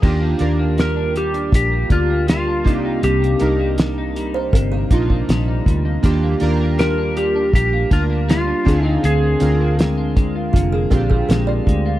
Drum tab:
CC |x---------------|----------------|----------------|----------------|
HH |--x-x-xxx-x-x-x-|xxx-x-x-x-x-x-x-|x-x-x-x-x-x-x-x-|x-x-x-x-x-x-x-x-|
SD |----o-------o---|----o-------o---|----o-------o---|----o-------o---|
BD |o-------o-o---o-|--------o-oo--o-|o-------o-o---o-|------o-o-oo--o-|